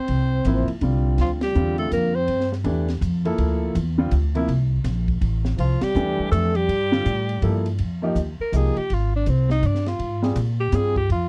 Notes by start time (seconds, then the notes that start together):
Already playing: C4 C5
0.08 C2, ride
0.45 A1 C3 F3 A#3 E4, hi-hat pedal, ride
0.68 muted upright bass stroke, ride
0.81 C2 D3 G3 C4 F4, ride
1.18 D2 F3 F4, snare, ride
1.41 G3 G4, snare, ride
1.55 E2 D3 G3 C4 F4, hi-hat pedal
1.78 A3 A4, ride
1.91 F2 A#3 A#4, hi-hat pedal, ride
2.15 C4 C5
2.28 G2, ride
2.40 snare
2.52 snare
2.64 E2 E3 A3 D4 G4, ride
2.88 snare, ride
3.01 F2, hi-hat pedal, ride
3.25 F3 A#3 E4 A4, ride
3.38 D2, ride
3.75 E2, hi-hat pedal, ride
3.98 D3 G3 C4 F4
4.11 D2, hi-hat pedal, ride
4.35 C3 F3 A#3 E4, ride
4.48 C2, ride
4.84 A#1, snare, hi-hat pedal, ride
5.08 kick, ride
5.21 A1, ride
5.45 snare
5.58 C2 F3 F4, ride
5.81 G3 G4, muted upright bass stroke, snare, ride
5.95 E2 E3 A3 D4 G4, hi-hat pedal
6.19 muted upright bass stroke
6.31 F2 A3 A4, hi-hat pedal, ride
6.55 G3 G4, ride
6.68 G2, ride
6.92 D3 G3 C4 F4, snare
7.05 A2, hi-hat pedal, ride
7.29 ride
7.42 G2 F3 A#3 E4 A4, ride
7.66 ride
7.79 F2, ride
8.02 F3 A#3 D#4 G4
8.15 D#2, hi-hat pedal, ride
8.40 A#4, muted upright bass stroke
8.52 C2 F3 A#3 D#4 G4 G#4, hi-hat pedal, ride
8.77 G4, muted upright bass stroke, ride
8.90 G#1 F4, ride
9.16 D4
9.26 C2 C4, hi-hat pedal, ride
9.50 D#4, snare
9.63 G2 D4, hi-hat pedal, ride
9.75 snare
9.86 F4, snare, ride
9.99 G#2, ride
10.22 G3 C4 F4 G#4, snare
10.36 A#2, hi-hat pedal, ride
10.60 G4
10.72 G2 G3 C4 F4 G#4, hi-hat pedal, ride
10.96 G4, kick, ride
11.09 F2 F4, ride